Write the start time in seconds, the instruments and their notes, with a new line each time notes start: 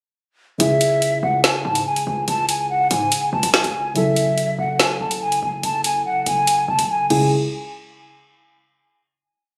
0.58 808-style bass C#2, synth keys C#3 G#3 E4 G#4, flute E5, closed hi-hat
0.81 closed hi-hat
1.02 closed hi-hat
1.23 808-style bass C#2, flute F#5
1.44 flute G#5, snare, closed hi-hat
1.65 808-style bass G#2, flute A5
1.75 closed hi-hat
1.86 flute G#5
1.96 closed hi-hat
2.07 808-style bass C#2, flute G#5
2.28 808-style bass C#2, flute A5, closed hi-hat
2.49 flute G#5, closed hi-hat
2.70 flute F#5
2.91 808-style bass G#2, flute G#5, closed hi-hat
3.12 closed hi-hat
3.33 808-style bass C#2, flute A5
3.43 808-style bass C2, closed hi-hat
3.54 flute G#5, snare
3.64 808-style bass C#2, closed hi-hat
3.94 808-style bass F#1, synth keys C#3 F#3 E4 A4, flute E5, closed hi-hat
4.16 closed hi-hat
4.38 closed hi-hat
4.59 808-style bass F#1, flute F#5
4.80 flute G#5, snare, closed hi-hat
5.01 808-style bass F#1, flute A5
5.11 closed hi-hat
5.22 flute G#5
5.32 closed hi-hat
5.43 808-style bass F#1, flute G#5
5.63 808-style bass F#1, flute A5, closed hi-hat
5.84 flute G#5, closed hi-hat
6.06 flute F#5
6.26 808-style bass F#1, flute G#5, closed hi-hat
6.47 closed hi-hat
6.68 808-style bass F#1, flute A5
6.79 808-style bass F#1, closed hi-hat
6.89 flute G#5
7.10 808-style bass C#2, synth keys C#3 G#3 E4 G#4, flute G#5, crash